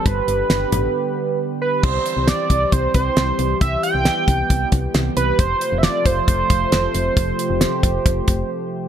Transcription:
Already playing: analog synth pad G3
0.06 fm bass G1, analog synth pad D3 B3 G4, analog synth lead B4, kick, closed hi-hat
0.28 fm bass G1, closed hi-hat
0.50 fm bass G1, snare, closed hi-hat
0.72 fm bass A1, closed hi-hat, mid tom
1.61 analog synth lead B4
1.83 fm bass C2, analog synth pad E3 G3 C4 G4, analog synth lead C5, kick, crash
2.06 closed hi-hat
2.17 fm bass C2
2.28 analog synth lead D5, snare, closed hi-hat
2.50 fm bass C2, kick, closed hi-hat
2.72 fm bass C2, analog synth lead C5, kick, closed hi-hat
2.94 fm bass C2, analog synth lead C5, kick, closed hi-hat
3.17 fm bass C2, snare, closed hi-hat
3.39 fm bass C2, closed hi-hat
3.61 fm bass C2, analog synth pad B3, analog synth lead E5, kick, closed hi-hat
3.83 analog synth lead G5, closed hi-hat
3.94 fm bass C2
4.05 snare, closed hi-hat
4.28 fm bass C2, kick, closed hi-hat
4.50 fm bass C2, kick, closed hi-hat
4.72 fm bass C2, kick, closed hi-hat
4.94 fm bass C2, snare, closed hi-hat
5.17 fm bass C2, analog synth lead B4, closed hi-hat
5.39 fm bass F1, analog synth pad C3 F3 A3 F4, analog synth lead C5, kick, closed hi-hat
5.61 closed hi-hat
5.72 fm bass F1
5.78 analog synth lead E5
5.83 analog synth lead D5, snare, closed hi-hat
6.06 fm bass F1, analog synth lead C5, kick, closed hi-hat
6.28 fm bass F1, kick, closed hi-hat
6.50 fm bass F1, kick, closed hi-hat
6.72 fm bass F1, snare, closed hi-hat
6.95 fm bass F1, closed hi-hat
7.17 fm bass F1, analog synth pad G4, kick, closed hi-hat
7.39 closed hi-hat
7.50 fm bass F1
7.61 snare, closed hi-hat
7.83 fm bass F1, kick, closed hi-hat
8.06 fm bass F1, kick, closed hi-hat
8.28 fm bass F1, kick, closed hi-hat

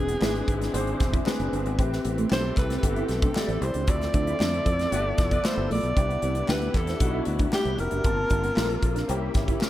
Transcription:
Already playing: fingered electric bass E1, string section D3 G#3 C4 E4, grand piano C4 D4 G#4 B4, alto saxophone G#4
0.08 clean electric guitar B3, closed hi-hat
0.21 fingered electric bass G#1, grand piano C4 D4 G#4 B4, clean electric guitar E4, snare, clap
0.35 closed hi-hat
0.48 fingered electric bass G#1, muted clean electric guitar stroke, kick, closed hi-hat
0.61 clean electric guitar D4, snare, closed hi-hat
0.73 fingered electric bass G#1, clean electric guitar B3, grand piano C4 D4 G#4 C5, closed hi-hat
0.87 closed hi-hat
1.00 fingered electric bass E1, muted clean electric guitar stroke, kick, snare, closed hi-hat
1.13 clean electric guitar E4, kick, closed hi-hat
1.25 grand piano C4 D4 G#4 B4, snare, clap
1.40 fingered electric bass F#1, closed hi-hat
1.52 fingered electric bass G1, clean electric guitar D4, closed hi-hat
1.66 fingered electric bass G#1, clean electric guitar B3, closed hi-hat
1.78 fingered electric bass A1, string section E3 A3 G4, grand piano C4 E4 G4 B4, kick, closed hi-hat
1.92 muted clean electric guitar stroke, snare
2.05 fingered electric bass A1, clean electric guitar B3, closed hi-hat
2.18 clean electric guitar A3, closed hi-hat
2.30 fingered electric bass B1, grand piano C4 E4 G4 A4, clean electric guitar D4, alto saxophone C5, snare, clap
2.57 fingered electric bass C2, alto saxophone B4, muted clean electric guitar stroke, kick, clap, closed hi-hat
2.70 clean electric guitar C4, snare, closed hi-hat
2.78 alto saxophone B4
2.82 fingered electric bass G1, grand piano B3 E4 G4 B4, alto saxophone A4, kick, closed hi-hat
2.89 grand piano C4
2.96 clean electric guitar E4, closed hi-hat
3.08 fingered electric bass B1, muted clean electric guitar stroke, snare, closed hi-hat
3.22 clean electric guitar D4, kick, closed hi-hat
3.35 grand piano C4 E4 G4 D5, snare, clap
3.48 fingered electric bass A1, clean electric guitar C4, closed hi-hat
3.61 fingered electric bass C2, alto saxophone C5, muted clean electric guitar stroke, closed hi-hat
3.74 fingered electric bass C#2, clean electric guitar D4, closed hi-hat
3.87 fingered electric bass D2, string section D3 F3 A3 C4, grand piano C4 E4 F4 A4, alto saxophone D5, kick, closed hi-hat
4.01 muted clean electric guitar stroke, snare, closed hi-hat
4.14 fingered electric bass D2, clean electric guitar D4, kick, closed hi-hat
4.27 clean electric guitar E4, closed hi-hat
4.39 fingered electric bass F2, grand piano C4 E4 F4 A4, clean electric guitar D4, snare, clap
4.54 closed hi-hat
4.66 fingered electric bass F2, muted clean electric guitar stroke, kick, closed hi-hat
4.79 clean electric guitar C4, snare, closed hi-hat
4.91 fingered electric bass G1, string section D3 B3, grand piano B3 E4 F4 G4, clean electric guitar B3, horn section A4 B4 D5, closed hi-hat
4.99 grand piano A4
5.18 fingered electric bass F1, muted clean electric guitar stroke, kick, snare, closed hi-hat
5.31 clean electric guitar B3, horn section A4 B4 D5, kick, closed hi-hat
5.44 grand piano B3 E4 F4 A4, alto saxophone C5, muted clean electric guitar stroke, snare, clap
5.57 fingered electric bass G1
5.70 fingered electric bass A#1, clean electric guitar A3, alto saxophone D5, open hi-hat
5.83 fingered electric bass B1, clean electric guitar B3, closed hi-hat
5.96 fingered electric bass C2, string section C3 D4 E4, grand piano B3 D4 E4 G4, kick, closed hi-hat
6.10 muted clean electric guitar stroke, closed hi-hat
6.22 fingered electric bass C2, clean electric guitar C4, closed hi-hat
6.35 clean electric guitar B3, closed hi-hat
6.47 fingered electric bass D2, grand piano B3 D4 E4 G4, clean electric guitar D4, alto saxophone B4, snare, clap
6.62 closed hi-hat
6.74 fingered electric bass E2, alto saxophone A4, muted clean electric guitar stroke, kick, clap, closed hi-hat
6.87 clean electric guitar C4, snare, closed hi-hat
6.99 fingered electric bass B1, grand piano B3 D4 D#4 F#4, kick, closed hi-hat
7.07 grand piano E4
7.14 clean electric guitar E4
7.25 fingered electric bass D2, closed hi-hat
7.39 clean electric guitar D4, kick, closed hi-hat
7.52 grand piano B3 D4 E4 G4, alto saxophone G4, snare, clap
7.65 fingered electric bass C2, clean electric guitar C4, closed hi-hat
7.78 fingered electric bass F1, alto saxophone A#4, muted clean electric guitar stroke, closed hi-hat
7.91 fingered electric bass F#1, clean electric guitar D4, closed hi-hat
8.04 fingered electric bass G1, string section G3 A#3 F4, grand piano A#3 C4 F4 A5, kick, closed hi-hat
8.18 muted clean electric guitar stroke
8.30 fingered electric bass G1, clean electric guitar D4, kick, closed hi-hat
8.43 clean electric guitar B3, closed hi-hat
8.56 fingered electric bass A#1, grand piano A#3 C4 F4 A4, clean electric guitar E4, snare, clap
8.64 grand piano A#4
8.70 closed hi-hat
8.82 fingered electric bass A#1, muted clean electric guitar stroke, kick, closed hi-hat
8.95 clean electric guitar D4, snare, closed hi-hat
9.08 fingered electric bass C2, string section C3 C#4 E4, grand piano A#3 C#4 E4 G4, clean electric guitar C4, closed hi-hat
9.34 fingered electric bass G#1, muted clean electric guitar stroke, kick, snare, closed hi-hat
9.48 clean electric guitar E4, kick, closed hi-hat
9.60 grand piano A#3 C#4 E4 A#4, muted clean electric guitar stroke, snare, clap

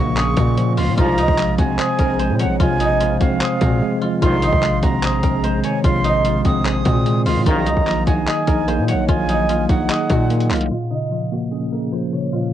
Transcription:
Already playing: 808-style bass A#1, tine electric piano A#2 C#3 F3 A#3 C#4, guzheng D#4 F#4 G#4 A#4 C#5, flute C#6
0.17 tine electric piano C#4, guzheng G#4, clap, closed hi-hat
0.37 808-style bass A#2, tine electric piano A#3, guzheng F#4, kick, closed hi-hat
0.57 tine electric piano F3, closed hi-hat
0.77 808-style bass C#2, tine electric piano C#3, guzheng F4, flute C6, open hi-hat
0.88 808-style bass A#2
0.97 808-style bass A#1, brass ensemble C2 G#2 F3, tine electric piano C3, guzheng F4, flute A#5, kick, closed hi-hat
1.18 808-style bass C#2, tine electric piano F3, guzheng D#4, closed hi-hat
1.28 808-style bass A#1, kick
1.38 tine electric piano G#3, guzheng F4, clap, closed hi-hat
1.58 808-style bass A#1, tine electric piano C4, guzheng F#4, flute G#5, kick, closed hi-hat
1.79 guzheng G#4, tine electric piano C5, clap, closed hi-hat
1.99 808-style bass A#1, tine electric piano C4, guzheng A#4, kick, closed hi-hat
2.19 tine electric piano G#3, guzheng C5, closed hi-hat
2.30 808-style bass A#2
2.39 tine electric piano F3, guzheng C#5, flute F#5, closed hi-hat
2.45 808-style bass A#1
2.60 808-style bass A#1, tine electric piano C3, guzheng F4, flute G#5, kick, closed hi-hat
2.80 tine electric piano F3, guzheng D#4, closed hi-hat
3.00 tine electric piano G#3, guzheng F4, closed hi-hat
3.21 808-style bass A#1, tine electric piano C4, guzheng F#4, flute F5, kick, closed hi-hat
3.41 guzheng G#4, tine electric piano C5, clap, closed hi-hat
3.61 808-style bass A#2, tine electric piano C4, guzheng F#4, kick, closed hi-hat
3.82 tine electric piano G#3
4.02 tine electric piano F3, guzheng F4
4.22 808-style bass A#1, brass ensemble C2 G#2 D#3, tine electric piano C3, guzheng F4, flute C6, kick, closed hi-hat
4.42 tine electric piano D#3, guzheng D#4, closed hi-hat
4.53 808-style bass A#1, kick
4.63 tine electric piano G#3, guzheng F4, clap, closed hi-hat
4.83 808-style bass A#1, tine electric piano C4, guzheng F#4, flute A#5, kick, closed hi-hat
5.02 guzheng G#4, tine electric piano C5, clap, closed hi-hat
5.23 808-style bass A#1, tine electric piano C4, guzheng A#4, kick, closed hi-hat
5.44 tine electric piano G#3, guzheng C5, closed hi-hat
5.64 tine electric piano D#3, guzheng C#5, flute G#5, closed hi-hat
5.84 808-style bass A#1, tine electric piano C3, guzheng F4, flute C6, kick, closed hi-hat
6.04 tine electric piano D#3, guzheng D#4, closed hi-hat
6.24 tine electric piano G#3, guzheng F4, closed hi-hat
6.45 808-style bass A#1, tine electric piano C4, guzheng F#4, flute D#6, kick, closed hi-hat
6.65 guzheng G#4, tine electric piano C5, clap, closed hi-hat
6.85 808-style bass A#2, tine electric piano C4, guzheng F#4, kick, closed hi-hat
7.06 tine electric piano G#3, closed hi-hat
7.26 808-style bass C#2, tine electric piano D#3, guzheng F4, flute C6, open hi-hat
7.36 808-style bass A#2
7.46 808-style bass A#1, brass ensemble A#1 F#2 D#3, tine electric piano D#3, guzheng F4, flute A#5, kick, closed hi-hat
7.66 808-style bass C#2, tine electric piano F#3, guzheng D#4, closed hi-hat
7.77 808-style bass A#1, kick
7.87 tine electric piano A#3, guzheng F4, clap, closed hi-hat
8.07 808-style bass A#1, tine electric piano D#4, guzheng F#4, flute G#5, kick, closed hi-hat
8.27 guzheng G#4, tine electric piano D#5, clap, closed hi-hat
8.47 808-style bass A#1, tine electric piano D#4, guzheng A#4, kick, closed hi-hat
8.68 tine electric piano A#3, guzheng C5, closed hi-hat
8.78 808-style bass A#2
8.88 tine electric piano F#3, guzheng C#5, flute F#5, closed hi-hat
8.93 808-style bass A#1
9.08 808-style bass A#1, tine electric piano D#3, guzheng F4, flute G#5, kick, closed hi-hat
9.29 tine electric piano F#3, guzheng D#4, closed hi-hat
9.49 tine electric piano A#3, guzheng F4, closed hi-hat
9.69 808-style bass A#1, tine electric piano D#4, guzheng F#4, flute F#5, kick, closed hi-hat
9.90 guzheng G#4, tine electric piano D#5, clap, closed hi-hat
10.10 808-style bass A#2, tine electric piano D#4, guzheng F#4, kick, closed hi-hat
10.30 tine electric piano A#3, closed hi-hat
10.40 closed hi-hat
10.50 808-style bass C2, tine electric piano F#3, guzheng F4, clap, closed hi-hat, open hi-hat
10.56 closed hi-hat
10.61 closed hi-hat
10.66 closed hi-hat
10.70 tine electric piano A#2, guzheng F4
10.90 tine electric piano C#3, guzheng D#4
11.11 tine electric piano F3, guzheng F4
11.32 tine electric piano A#3, guzheng F#4
11.51 tine electric piano C#4, guzheng G#4
11.72 tine electric piano A#3, guzheng A#4
11.92 tine electric piano F3, guzheng C5
12.13 tine electric piano C#3, guzheng C#5
12.32 tine electric piano A#2, guzheng F4

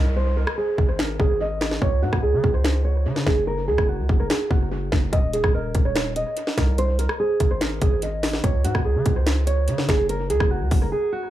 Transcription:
Already playing: 808-style bass C2, nylon-string guitar A#4, downlifter
0.16 nylon-string guitar C5
0.37 nylon-string guitar A#4
0.47 cross-stick
0.58 nylon-string guitar G#4
0.78 808-style bass G#1, kick
0.89 nylon-string guitar C5
0.99 nylon-string guitar A#4, finger snap, snare
1.20 808-style bass G#1, nylon-string guitar G#4, kick
1.41 nylon-string guitar D#5
1.61 finger snap, snare
1.71 snare
1.82 808-style bass C#2, nylon-string guitar C#5, kick
2.02 808-style bass G#2, nylon-string guitar F#4
2.13 808-style bass C#2, kick, cross-stick
2.23 nylon-string guitar G#4
2.33 808-style bass C#3
2.44 808-style bass C#2, kick
2.54 nylon-string guitar C5
2.65 finger snap, snare
2.85 nylon-string guitar C#5
3.06 808-style bass C#3
3.16 snare
3.27 808-style bass F#1, nylon-string guitar G#4, finger snap, kick, snare
3.47 nylon-string guitar A#4
3.68 808-style bass C#2, nylon-string guitar G#4
3.78 808-style bass F#1, kick, cross-stick
3.89 nylon-string guitar F#4
3.99 808-style bass C#2
4.09 808-style bass F#1, kick
4.20 nylon-string guitar A#4
4.30 nylon-string guitar G#4, finger snap, snare
4.51 808-style bass F#1, nylon-string guitar F#4, kick
4.71 nylon-string guitar F#4
4.92 808-style bass F#1, finger snap, kick, snare
5.12 808-style bass D#1, nylon-string guitar D#5, kick, closed hi-hat
5.33 nylon-string guitar G#4, closed hi-hat
5.44 808-style bass D#1, kick, cross-stick
5.54 nylon-string guitar A#4
5.75 808-style bass D#1, kick, closed hi-hat
5.85 nylon-string guitar C#5
5.96 finger snap, snare, closed hi-hat
6.16 nylon-string guitar D#5, closed hi-hat
6.37 closed hi-hat
6.47 snare
6.57 808-style bass C2, nylon-string guitar A#4, finger snap, kick, snare, closed hi-hat
6.78 nylon-string guitar C5, closed hi-hat
6.99 nylon-string guitar A#4, closed hi-hat
7.09 cross-stick
7.20 nylon-string guitar G#4
7.40 808-style bass G#1, kick, closed hi-hat
7.51 nylon-string guitar C5
7.61 nylon-string guitar A#4, finger snap, snare, closed hi-hat
7.82 808-style bass G#1, nylon-string guitar G#4, kick, closed hi-hat
8.02 nylon-string guitar D#5, closed hi-hat
8.23 finger snap, snare, open hi-hat
8.33 snare
8.44 808-style bass C#2, nylon-string guitar C#5, kick, closed hi-hat
8.64 808-style bass G#2, nylon-string guitar F#4, closed hi-hat
8.75 808-style bass C#2, kick, cross-stick
8.85 nylon-string guitar G#4
8.96 808-style bass C#3
9.06 808-style bass C#2, kick, closed hi-hat
9.16 nylon-string guitar C5
9.27 finger snap, snare, closed hi-hat
9.47 nylon-string guitar C#5, closed hi-hat
9.68 808-style bass C#3, closed hi-hat
9.78 snare
9.89 808-style bass F#1, nylon-string guitar G#4, finger snap, kick, snare, closed hi-hat
10.09 nylon-string guitar A#4, closed hi-hat
10.30 808-style bass C#2, nylon-string guitar G#4, closed hi-hat
10.40 808-style bass F#1, kick, cross-stick
10.51 nylon-string guitar F#4
10.61 808-style bass C#2
10.71 808-style bass F#1, kick, open hi-hat
10.82 nylon-string guitar A#4
10.92 nylon-string guitar G#4
11.12 nylon-string guitar F#4

